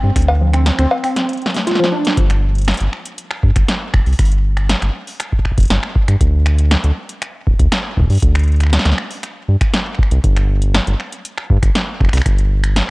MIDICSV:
0, 0, Header, 1, 4, 480
1, 0, Start_track
1, 0, Tempo, 504202
1, 149, Time_signature, 4, 2, 24, 8
1, 12283, End_track
2, 0, Start_track
2, 0, Title_t, "Synth pluck"
2, 0, Program_c, 0, 84
2, 390, Note_on_c, 0, 53, 77
2, 504, Note_off_c, 0, 53, 0
2, 510, Note_on_c, 0, 60, 75
2, 624, Note_off_c, 0, 60, 0
2, 750, Note_on_c, 0, 60, 101
2, 837, Note_off_c, 0, 60, 0
2, 989, Note_on_c, 0, 60, 78
2, 1042, Note_off_c, 0, 60, 0
2, 1469, Note_on_c, 0, 57, 77
2, 1522, Note_off_c, 0, 57, 0
2, 1589, Note_on_c, 0, 65, 82
2, 1677, Note_off_c, 0, 65, 0
2, 1709, Note_on_c, 0, 53, 104
2, 1762, Note_off_c, 0, 53, 0
2, 1829, Note_on_c, 0, 62, 79
2, 1917, Note_off_c, 0, 62, 0
2, 12283, End_track
3, 0, Start_track
3, 0, Title_t, "Analog synth bass"
3, 0, Program_c, 1, 38
3, 30, Note_on_c, 1, 43, 102
3, 105, Note_off_c, 1, 43, 0
3, 150, Note_on_c, 1, 38, 102
3, 677, Note_off_c, 1, 38, 0
3, 750, Note_on_c, 1, 38, 85
3, 825, Note_off_c, 1, 38, 0
3, 2070, Note_on_c, 1, 31, 99
3, 2597, Note_off_c, 1, 31, 0
3, 2669, Note_on_c, 1, 31, 84
3, 2744, Note_off_c, 1, 31, 0
3, 3269, Note_on_c, 1, 43, 85
3, 3344, Note_off_c, 1, 43, 0
3, 3389, Note_on_c, 1, 31, 102
3, 3464, Note_off_c, 1, 31, 0
3, 3749, Note_on_c, 1, 29, 88
3, 3824, Note_off_c, 1, 29, 0
3, 3868, Note_on_c, 1, 36, 102
3, 3944, Note_off_c, 1, 36, 0
3, 3989, Note_on_c, 1, 31, 100
3, 4517, Note_off_c, 1, 31, 0
3, 4589, Note_on_c, 1, 31, 86
3, 4664, Note_off_c, 1, 31, 0
3, 5309, Note_on_c, 1, 29, 96
3, 5384, Note_off_c, 1, 29, 0
3, 5430, Note_on_c, 1, 31, 106
3, 5505, Note_off_c, 1, 31, 0
3, 5790, Note_on_c, 1, 43, 98
3, 5865, Note_off_c, 1, 43, 0
3, 5909, Note_on_c, 1, 38, 99
3, 6437, Note_off_c, 1, 38, 0
3, 6511, Note_on_c, 1, 38, 85
3, 6585, Note_off_c, 1, 38, 0
3, 7110, Note_on_c, 1, 26, 89
3, 7185, Note_off_c, 1, 26, 0
3, 7230, Note_on_c, 1, 38, 98
3, 7305, Note_off_c, 1, 38, 0
3, 7590, Note_on_c, 1, 36, 92
3, 7665, Note_off_c, 1, 36, 0
3, 7710, Note_on_c, 1, 43, 106
3, 7785, Note_off_c, 1, 43, 0
3, 7830, Note_on_c, 1, 38, 100
3, 8357, Note_off_c, 1, 38, 0
3, 8429, Note_on_c, 1, 38, 88
3, 8504, Note_off_c, 1, 38, 0
3, 9030, Note_on_c, 1, 43, 81
3, 9105, Note_off_c, 1, 43, 0
3, 9631, Note_on_c, 1, 36, 92
3, 9705, Note_off_c, 1, 36, 0
3, 9750, Note_on_c, 1, 31, 100
3, 10277, Note_off_c, 1, 31, 0
3, 10350, Note_on_c, 1, 31, 88
3, 10425, Note_off_c, 1, 31, 0
3, 10949, Note_on_c, 1, 43, 90
3, 11024, Note_off_c, 1, 43, 0
3, 11069, Note_on_c, 1, 31, 98
3, 11144, Note_off_c, 1, 31, 0
3, 11429, Note_on_c, 1, 29, 92
3, 11504, Note_off_c, 1, 29, 0
3, 11549, Note_on_c, 1, 36, 105
3, 11624, Note_off_c, 1, 36, 0
3, 11669, Note_on_c, 1, 31, 101
3, 12197, Note_off_c, 1, 31, 0
3, 12283, End_track
4, 0, Start_track
4, 0, Title_t, "Drums"
4, 150, Note_on_c, 9, 26, 54
4, 150, Note_on_c, 9, 36, 111
4, 150, Note_on_c, 9, 42, 64
4, 150, Note_on_c, 9, 46, 81
4, 210, Note_off_c, 9, 42, 0
4, 210, Note_on_c, 9, 42, 36
4, 245, Note_off_c, 9, 36, 0
4, 246, Note_off_c, 9, 26, 0
4, 246, Note_off_c, 9, 46, 0
4, 270, Note_on_c, 9, 56, 83
4, 305, Note_off_c, 9, 42, 0
4, 365, Note_off_c, 9, 56, 0
4, 510, Note_on_c, 9, 26, 53
4, 510, Note_on_c, 9, 42, 51
4, 605, Note_off_c, 9, 26, 0
4, 605, Note_off_c, 9, 42, 0
4, 630, Note_on_c, 9, 38, 116
4, 630, Note_on_c, 9, 42, 64
4, 725, Note_off_c, 9, 38, 0
4, 725, Note_off_c, 9, 42, 0
4, 750, Note_on_c, 9, 26, 81
4, 750, Note_on_c, 9, 42, 37
4, 845, Note_off_c, 9, 26, 0
4, 845, Note_off_c, 9, 42, 0
4, 869, Note_on_c, 9, 56, 81
4, 964, Note_off_c, 9, 56, 0
4, 990, Note_on_c, 9, 26, 54
4, 990, Note_on_c, 9, 46, 59
4, 1085, Note_off_c, 9, 26, 0
4, 1085, Note_off_c, 9, 46, 0
4, 1110, Note_on_c, 9, 38, 65
4, 1110, Note_on_c, 9, 42, 65
4, 1205, Note_off_c, 9, 38, 0
4, 1205, Note_off_c, 9, 42, 0
4, 1230, Note_on_c, 9, 42, 34
4, 1269, Note_off_c, 9, 42, 0
4, 1269, Note_on_c, 9, 42, 29
4, 1309, Note_off_c, 9, 42, 0
4, 1309, Note_on_c, 9, 42, 22
4, 1350, Note_off_c, 9, 42, 0
4, 1350, Note_on_c, 9, 42, 19
4, 1390, Note_off_c, 9, 42, 0
4, 1390, Note_on_c, 9, 38, 74
4, 1390, Note_on_c, 9, 42, 16
4, 1430, Note_off_c, 9, 42, 0
4, 1430, Note_on_c, 9, 42, 13
4, 1470, Note_on_c, 9, 46, 59
4, 1485, Note_off_c, 9, 38, 0
4, 1490, Note_on_c, 9, 38, 76
4, 1525, Note_off_c, 9, 42, 0
4, 1565, Note_off_c, 9, 46, 0
4, 1585, Note_off_c, 9, 38, 0
4, 1590, Note_on_c, 9, 38, 39
4, 1590, Note_on_c, 9, 42, 66
4, 1630, Note_off_c, 9, 38, 0
4, 1630, Note_on_c, 9, 38, 52
4, 1670, Note_off_c, 9, 38, 0
4, 1670, Note_on_c, 9, 38, 67
4, 1685, Note_off_c, 9, 42, 0
4, 1749, Note_off_c, 9, 38, 0
4, 1749, Note_on_c, 9, 38, 91
4, 1845, Note_off_c, 9, 38, 0
4, 1950, Note_on_c, 9, 42, 51
4, 1970, Note_on_c, 9, 38, 104
4, 2045, Note_off_c, 9, 42, 0
4, 2065, Note_off_c, 9, 38, 0
4, 2069, Note_on_c, 9, 36, 119
4, 2070, Note_on_c, 9, 42, 66
4, 2165, Note_off_c, 9, 36, 0
4, 2165, Note_off_c, 9, 42, 0
4, 2190, Note_on_c, 9, 26, 53
4, 2190, Note_on_c, 9, 42, 38
4, 2285, Note_off_c, 9, 26, 0
4, 2285, Note_off_c, 9, 42, 0
4, 2430, Note_on_c, 9, 42, 25
4, 2460, Note_off_c, 9, 42, 0
4, 2460, Note_on_c, 9, 42, 28
4, 2490, Note_off_c, 9, 42, 0
4, 2490, Note_on_c, 9, 42, 30
4, 2519, Note_off_c, 9, 42, 0
4, 2519, Note_on_c, 9, 42, 34
4, 2549, Note_off_c, 9, 42, 0
4, 2549, Note_on_c, 9, 26, 81
4, 2549, Note_on_c, 9, 38, 115
4, 2549, Note_on_c, 9, 42, 69
4, 2580, Note_off_c, 9, 42, 0
4, 2580, Note_on_c, 9, 42, 41
4, 2609, Note_off_c, 9, 42, 0
4, 2609, Note_on_c, 9, 42, 46
4, 2639, Note_off_c, 9, 42, 0
4, 2639, Note_on_c, 9, 42, 47
4, 2644, Note_off_c, 9, 26, 0
4, 2644, Note_off_c, 9, 38, 0
4, 2669, Note_off_c, 9, 42, 0
4, 2669, Note_on_c, 9, 42, 39
4, 2764, Note_off_c, 9, 42, 0
4, 2789, Note_on_c, 9, 26, 52
4, 2884, Note_off_c, 9, 26, 0
4, 2909, Note_on_c, 9, 42, 54
4, 3004, Note_off_c, 9, 42, 0
4, 3029, Note_on_c, 9, 42, 69
4, 3124, Note_off_c, 9, 42, 0
4, 3149, Note_on_c, 9, 26, 80
4, 3244, Note_off_c, 9, 26, 0
4, 3269, Note_on_c, 9, 36, 106
4, 3364, Note_off_c, 9, 36, 0
4, 3389, Note_on_c, 9, 26, 53
4, 3389, Note_on_c, 9, 36, 100
4, 3389, Note_on_c, 9, 42, 55
4, 3484, Note_off_c, 9, 26, 0
4, 3484, Note_off_c, 9, 36, 0
4, 3484, Note_off_c, 9, 42, 0
4, 3508, Note_on_c, 9, 38, 115
4, 3508, Note_on_c, 9, 42, 68
4, 3604, Note_off_c, 9, 38, 0
4, 3604, Note_off_c, 9, 42, 0
4, 3748, Note_on_c, 9, 26, 84
4, 3749, Note_on_c, 9, 36, 118
4, 3844, Note_off_c, 9, 26, 0
4, 3844, Note_off_c, 9, 36, 0
4, 3868, Note_on_c, 9, 46, 35
4, 3928, Note_off_c, 9, 46, 0
4, 3928, Note_on_c, 9, 46, 44
4, 3989, Note_off_c, 9, 46, 0
4, 3989, Note_on_c, 9, 26, 52
4, 3989, Note_on_c, 9, 36, 121
4, 3989, Note_on_c, 9, 42, 69
4, 3989, Note_on_c, 9, 46, 52
4, 4049, Note_off_c, 9, 46, 0
4, 4049, Note_on_c, 9, 46, 62
4, 4084, Note_off_c, 9, 26, 0
4, 4084, Note_off_c, 9, 36, 0
4, 4084, Note_off_c, 9, 42, 0
4, 4109, Note_on_c, 9, 42, 39
4, 4144, Note_off_c, 9, 46, 0
4, 4205, Note_off_c, 9, 42, 0
4, 4349, Note_on_c, 9, 26, 78
4, 4349, Note_on_c, 9, 42, 53
4, 4444, Note_off_c, 9, 26, 0
4, 4444, Note_off_c, 9, 42, 0
4, 4469, Note_on_c, 9, 38, 123
4, 4469, Note_on_c, 9, 42, 68
4, 4564, Note_off_c, 9, 38, 0
4, 4564, Note_off_c, 9, 42, 0
4, 4589, Note_on_c, 9, 26, 55
4, 4589, Note_on_c, 9, 42, 39
4, 4685, Note_off_c, 9, 26, 0
4, 4685, Note_off_c, 9, 42, 0
4, 4829, Note_on_c, 9, 46, 58
4, 4924, Note_off_c, 9, 46, 0
4, 4949, Note_on_c, 9, 26, 80
4, 4949, Note_on_c, 9, 42, 69
4, 5044, Note_off_c, 9, 26, 0
4, 5044, Note_off_c, 9, 42, 0
4, 5069, Note_on_c, 9, 36, 82
4, 5129, Note_off_c, 9, 36, 0
4, 5129, Note_on_c, 9, 36, 67
4, 5189, Note_off_c, 9, 36, 0
4, 5189, Note_on_c, 9, 26, 54
4, 5189, Note_on_c, 9, 36, 56
4, 5249, Note_off_c, 9, 36, 0
4, 5249, Note_on_c, 9, 36, 45
4, 5284, Note_off_c, 9, 26, 0
4, 5309, Note_off_c, 9, 36, 0
4, 5309, Note_on_c, 9, 36, 105
4, 5309, Note_on_c, 9, 42, 51
4, 5333, Note_off_c, 9, 42, 0
4, 5333, Note_on_c, 9, 42, 43
4, 5357, Note_off_c, 9, 42, 0
4, 5357, Note_on_c, 9, 42, 35
4, 5382, Note_off_c, 9, 42, 0
4, 5382, Note_on_c, 9, 42, 28
4, 5405, Note_off_c, 9, 36, 0
4, 5405, Note_off_c, 9, 42, 0
4, 5405, Note_on_c, 9, 42, 23
4, 5429, Note_off_c, 9, 42, 0
4, 5429, Note_on_c, 9, 38, 119
4, 5429, Note_on_c, 9, 42, 67
4, 5524, Note_off_c, 9, 38, 0
4, 5524, Note_off_c, 9, 42, 0
4, 5549, Note_on_c, 9, 26, 77
4, 5644, Note_off_c, 9, 26, 0
4, 5669, Note_on_c, 9, 36, 119
4, 5765, Note_off_c, 9, 36, 0
4, 5789, Note_on_c, 9, 26, 54
4, 5789, Note_on_c, 9, 42, 57
4, 5885, Note_off_c, 9, 26, 0
4, 5885, Note_off_c, 9, 42, 0
4, 5909, Note_on_c, 9, 42, 69
4, 5910, Note_on_c, 9, 36, 125
4, 6005, Note_off_c, 9, 36, 0
4, 6005, Note_off_c, 9, 42, 0
4, 6150, Note_on_c, 9, 26, 79
4, 6150, Note_on_c, 9, 42, 38
4, 6245, Note_off_c, 9, 26, 0
4, 6245, Note_off_c, 9, 42, 0
4, 6270, Note_on_c, 9, 42, 53
4, 6365, Note_off_c, 9, 42, 0
4, 6390, Note_on_c, 9, 26, 52
4, 6390, Note_on_c, 9, 38, 127
4, 6390, Note_on_c, 9, 42, 68
4, 6485, Note_off_c, 9, 26, 0
4, 6485, Note_off_c, 9, 38, 0
4, 6485, Note_off_c, 9, 42, 0
4, 6511, Note_on_c, 9, 42, 40
4, 6606, Note_off_c, 9, 42, 0
4, 6751, Note_on_c, 9, 42, 53
4, 6846, Note_off_c, 9, 42, 0
4, 6870, Note_on_c, 9, 26, 77
4, 6870, Note_on_c, 9, 42, 69
4, 6965, Note_off_c, 9, 26, 0
4, 6965, Note_off_c, 9, 42, 0
4, 7110, Note_on_c, 9, 36, 113
4, 7205, Note_off_c, 9, 36, 0
4, 7230, Note_on_c, 9, 36, 112
4, 7230, Note_on_c, 9, 42, 52
4, 7325, Note_off_c, 9, 36, 0
4, 7325, Note_off_c, 9, 42, 0
4, 7350, Note_on_c, 9, 26, 74
4, 7350, Note_on_c, 9, 38, 124
4, 7350, Note_on_c, 9, 42, 69
4, 7445, Note_off_c, 9, 26, 0
4, 7445, Note_off_c, 9, 38, 0
4, 7445, Note_off_c, 9, 42, 0
4, 7590, Note_on_c, 9, 36, 113
4, 7614, Note_off_c, 9, 36, 0
4, 7614, Note_on_c, 9, 36, 94
4, 7638, Note_off_c, 9, 36, 0
4, 7638, Note_on_c, 9, 36, 78
4, 7662, Note_off_c, 9, 36, 0
4, 7662, Note_on_c, 9, 36, 63
4, 7686, Note_off_c, 9, 36, 0
4, 7686, Note_on_c, 9, 36, 52
4, 7710, Note_on_c, 9, 46, 35
4, 7734, Note_off_c, 9, 46, 0
4, 7734, Note_on_c, 9, 46, 42
4, 7758, Note_off_c, 9, 46, 0
4, 7758, Note_on_c, 9, 46, 51
4, 7781, Note_off_c, 9, 36, 0
4, 7782, Note_off_c, 9, 46, 0
4, 7782, Note_on_c, 9, 46, 59
4, 7806, Note_off_c, 9, 46, 0
4, 7806, Note_on_c, 9, 46, 67
4, 7830, Note_on_c, 9, 36, 123
4, 7830, Note_on_c, 9, 42, 65
4, 7901, Note_off_c, 9, 46, 0
4, 7925, Note_off_c, 9, 36, 0
4, 7925, Note_off_c, 9, 42, 0
4, 7951, Note_on_c, 9, 26, 75
4, 7951, Note_on_c, 9, 42, 34
4, 7990, Note_off_c, 9, 42, 0
4, 7990, Note_on_c, 9, 42, 28
4, 8030, Note_off_c, 9, 42, 0
4, 8030, Note_on_c, 9, 42, 22
4, 8046, Note_off_c, 9, 26, 0
4, 8070, Note_off_c, 9, 42, 0
4, 8070, Note_on_c, 9, 42, 19
4, 8110, Note_off_c, 9, 42, 0
4, 8110, Note_on_c, 9, 42, 16
4, 8150, Note_off_c, 9, 42, 0
4, 8150, Note_on_c, 9, 42, 13
4, 8190, Note_off_c, 9, 42, 0
4, 8190, Note_on_c, 9, 26, 47
4, 8190, Note_on_c, 9, 42, 51
4, 8220, Note_off_c, 9, 26, 0
4, 8220, Note_on_c, 9, 26, 38
4, 8250, Note_off_c, 9, 26, 0
4, 8250, Note_on_c, 9, 26, 33
4, 8280, Note_off_c, 9, 26, 0
4, 8280, Note_on_c, 9, 26, 26
4, 8285, Note_off_c, 9, 42, 0
4, 8310, Note_off_c, 9, 26, 0
4, 8310, Note_on_c, 9, 26, 21
4, 8310, Note_on_c, 9, 38, 116
4, 8310, Note_on_c, 9, 42, 66
4, 8340, Note_off_c, 9, 26, 0
4, 8340, Note_on_c, 9, 26, 18
4, 8370, Note_off_c, 9, 26, 0
4, 8370, Note_off_c, 9, 38, 0
4, 8370, Note_on_c, 9, 26, 14
4, 8370, Note_on_c, 9, 38, 96
4, 8400, Note_off_c, 9, 26, 0
4, 8400, Note_on_c, 9, 26, 12
4, 8405, Note_off_c, 9, 42, 0
4, 8430, Note_off_c, 9, 38, 0
4, 8430, Note_on_c, 9, 38, 80
4, 8430, Note_on_c, 9, 42, 37
4, 8489, Note_off_c, 9, 38, 0
4, 8489, Note_on_c, 9, 38, 67
4, 8495, Note_off_c, 9, 26, 0
4, 8525, Note_off_c, 9, 42, 0
4, 8550, Note_on_c, 9, 26, 73
4, 8584, Note_off_c, 9, 38, 0
4, 8645, Note_off_c, 9, 26, 0
4, 8670, Note_on_c, 9, 46, 63
4, 8765, Note_off_c, 9, 46, 0
4, 8790, Note_on_c, 9, 26, 50
4, 8790, Note_on_c, 9, 42, 65
4, 8885, Note_off_c, 9, 26, 0
4, 8885, Note_off_c, 9, 42, 0
4, 9150, Note_on_c, 9, 26, 73
4, 9150, Note_on_c, 9, 36, 111
4, 9150, Note_on_c, 9, 42, 50
4, 9245, Note_off_c, 9, 26, 0
4, 9245, Note_off_c, 9, 36, 0
4, 9245, Note_off_c, 9, 42, 0
4, 9270, Note_on_c, 9, 38, 122
4, 9270, Note_on_c, 9, 42, 64
4, 9365, Note_off_c, 9, 38, 0
4, 9365, Note_off_c, 9, 42, 0
4, 9390, Note_on_c, 9, 26, 22
4, 9470, Note_off_c, 9, 26, 0
4, 9470, Note_on_c, 9, 26, 30
4, 9510, Note_on_c, 9, 36, 121
4, 9550, Note_off_c, 9, 26, 0
4, 9550, Note_on_c, 9, 26, 39
4, 9605, Note_off_c, 9, 36, 0
4, 9630, Note_on_c, 9, 42, 51
4, 9645, Note_off_c, 9, 26, 0
4, 9725, Note_off_c, 9, 42, 0
4, 9750, Note_on_c, 9, 36, 120
4, 9750, Note_on_c, 9, 42, 64
4, 9845, Note_off_c, 9, 36, 0
4, 9845, Note_off_c, 9, 42, 0
4, 9870, Note_on_c, 9, 26, 50
4, 9870, Note_on_c, 9, 42, 35
4, 9965, Note_off_c, 9, 26, 0
4, 9965, Note_off_c, 9, 42, 0
4, 10110, Note_on_c, 9, 42, 52
4, 10205, Note_off_c, 9, 42, 0
4, 10230, Note_on_c, 9, 26, 78
4, 10230, Note_on_c, 9, 38, 122
4, 10230, Note_on_c, 9, 42, 66
4, 10325, Note_off_c, 9, 26, 0
4, 10325, Note_off_c, 9, 38, 0
4, 10325, Note_off_c, 9, 42, 0
4, 10350, Note_on_c, 9, 42, 37
4, 10445, Note_off_c, 9, 42, 0
4, 10470, Note_on_c, 9, 26, 48
4, 10565, Note_off_c, 9, 26, 0
4, 10590, Note_on_c, 9, 42, 50
4, 10686, Note_off_c, 9, 42, 0
4, 10710, Note_on_c, 9, 42, 65
4, 10805, Note_off_c, 9, 42, 0
4, 10830, Note_on_c, 9, 26, 74
4, 10925, Note_off_c, 9, 26, 0
4, 10950, Note_on_c, 9, 36, 108
4, 11045, Note_off_c, 9, 36, 0
4, 11070, Note_on_c, 9, 26, 48
4, 11070, Note_on_c, 9, 36, 106
4, 11070, Note_on_c, 9, 42, 49
4, 11165, Note_off_c, 9, 36, 0
4, 11166, Note_off_c, 9, 26, 0
4, 11166, Note_off_c, 9, 42, 0
4, 11190, Note_on_c, 9, 38, 120
4, 11190, Note_on_c, 9, 42, 62
4, 11285, Note_off_c, 9, 38, 0
4, 11285, Note_off_c, 9, 42, 0
4, 11430, Note_on_c, 9, 26, 35
4, 11430, Note_on_c, 9, 36, 114
4, 11470, Note_off_c, 9, 26, 0
4, 11470, Note_on_c, 9, 26, 40
4, 11510, Note_off_c, 9, 26, 0
4, 11510, Note_on_c, 9, 26, 48
4, 11525, Note_off_c, 9, 36, 0
4, 11550, Note_off_c, 9, 26, 0
4, 11550, Note_on_c, 9, 26, 53
4, 11550, Note_on_c, 9, 46, 84
4, 11590, Note_off_c, 9, 26, 0
4, 11590, Note_on_c, 9, 26, 59
4, 11630, Note_off_c, 9, 26, 0
4, 11630, Note_on_c, 9, 26, 67
4, 11645, Note_off_c, 9, 46, 0
4, 11669, Note_on_c, 9, 36, 116
4, 11670, Note_off_c, 9, 26, 0
4, 11670, Note_on_c, 9, 26, 51
4, 11670, Note_on_c, 9, 42, 63
4, 11765, Note_off_c, 9, 26, 0
4, 11765, Note_off_c, 9, 36, 0
4, 11765, Note_off_c, 9, 42, 0
4, 11790, Note_on_c, 9, 42, 35
4, 11885, Note_off_c, 9, 42, 0
4, 12030, Note_on_c, 9, 26, 78
4, 12030, Note_on_c, 9, 42, 50
4, 12125, Note_off_c, 9, 26, 0
4, 12125, Note_off_c, 9, 42, 0
4, 12150, Note_on_c, 9, 38, 116
4, 12150, Note_on_c, 9, 42, 63
4, 12245, Note_off_c, 9, 38, 0
4, 12245, Note_off_c, 9, 42, 0
4, 12283, End_track
0, 0, End_of_file